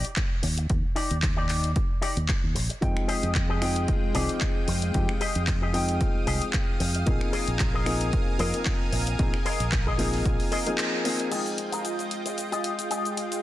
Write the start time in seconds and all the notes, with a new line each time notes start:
0.05 closed hi-hat
0.16 muted clean electric guitar stroke, kick, clap, closed hi-hat
0.42 D#2, muted clean electric guitar stroke, open hi-hat
0.57 muted clean electric guitar stroke, closed hi-hat
0.70 D#2, kick, closed hi-hat
0.95 D#4 G4 D5, open hi-hat
1.11 D#2, closed hi-hat
1.22 kick, clap, closed hi-hat
1.37 D#4 G4 D5
1.49 clap, open hi-hat
1.64 closed hi-hat
1.76 kick, closed hi-hat
2.01 D#4 G4 D5, open hi-hat
2.17 D#2, closed hi-hat
2.28 muted clean electric guitar stroke, kick, clap, closed hi-hat
2.44 D#2
2.55 A#1, muted clean electric guitar stroke, open hi-hat
2.69 muted clean electric guitar stroke, closed hi-hat
2.81 F2 F3 G#3 C4 D#4 F5 G5 D#6, kick, closed hi-hat
2.97 finger snap
3.08 G4 G#4 D#5, open hi-hat
3.23 F2, closed hi-hat
3.35 kick, clap, closed hi-hat
3.49 G4 G#4 D#5
3.61 F3 G#3 C4 D#4 G5, finger snap, open hi-hat
3.76 closed hi-hat
3.88 kick, closed hi-hat
4.14 C2 F3 G#3 C4 D#4 G4 G#4 D5, open hi-hat
4.29 closed hi-hat
4.41 muted clean electric guitar stroke, kick, clap, closed hi-hat
4.68 F2, muted clean electric guitar stroke, open hi-hat
4.82 muted clean electric guitar stroke, closed hi-hat
4.94 F2 F3 G#3 C4 D#4 G4, kick, closed hi-hat
5.09 finger snap
5.21 G4 G#4 D#5, open hi-hat
5.35 F2, closed hi-hat
5.47 kick, clap, closed hi-hat
5.62 G4 G#4 D#5
5.73 F3 G#3 C4 D#4 G5, open hi-hat
5.89 closed hi-hat
6.01 kick, closed hi-hat
6.15 muted fingered electric bass stroke
6.27 C2 G4 G#4 D#5, open hi-hat
6.42 closed hi-hat
6.53 muted clean electric guitar stroke, kick, clap, closed hi-hat
6.80 F2, muted clean electric guitar stroke, open hi-hat
6.94 muted clean electric guitar stroke, closed hi-hat
7.06 A#1 F3 A#3 C4 D#4 G#4 A#4 G#5, kick, closed hi-hat
7.21 finger snap
7.33 G#4 A#4 D#5, open hi-hat
7.48 A#1, closed hi-hat
7.59 kick, clap, closed hi-hat
7.74 G#4 A#4 D#5
7.86 F3 A#3 C4 D#4 G#4, finger snap, open hi-hat
8.01 closed hi-hat
8.13 kick, closed hi-hat
8.38 F2 F3 A#3 C4 D#4 G#4 A#4 D#5, open hi-hat
8.54 closed hi-hat
8.66 muted clean electric guitar stroke, kick, clap, closed hi-hat
8.92 A#1, muted clean electric guitar stroke, open hi-hat
9.07 muted clean electric guitar stroke, closed hi-hat
9.19 A#1 F3 A#3 C4 D#4 G#4, kick, closed hi-hat
9.34 finger snap
9.45 G#4 A#4 D#5, open hi-hat
9.60 A#1, closed hi-hat
9.72 kick, clap, closed hi-hat
9.87 G#4 A#4 D#5, kick
9.98 F3 A#3 C4 D#4 G#4, open hi-hat
10.14 open hi-hat
10.25 A#1, kick, closed hi-hat
10.40 open hi-hat
10.52 G#4 A#4 D#5, open hi-hat
10.66 F3 A#3 C4 D#4 G#4, closed hi-hat
10.78 muted clean electric guitar stroke, clap, closed hi-hat
11.04 F3 A#3 C4 D#4 G#4, muted clean electric guitar stroke, open hi-hat
11.19 muted clean electric guitar stroke, closed hi-hat
11.31 F3 G#3 C4 D#4 F4 G4 G#4 D#5 G5, closed hi-hat, crash, shaker
11.46 closed hi-hat, shaker
11.58 closed hi-hat
11.72 F4 G4 G#4 A#4, closed hi-hat, shaker
11.85 closed hi-hat, shaker
11.99 muted clean electric guitar stroke, closed hi-hat, shaker
12.11 closed hi-hat
12.25 muted clean electric guitar stroke, closed hi-hat, shaker
12.37 muted clean electric guitar stroke, closed hi-hat, shaker
12.52 F4 G4 G#4 D#5, closed hi-hat, shaker
12.64 closed hi-hat
12.79 closed hi-hat, shaker
12.90 F4 G4 G#4 D#5, closed hi-hat, shaker
13.05 closed hi-hat, shaker
13.17 closed hi-hat
13.32 closed hi-hat, shaker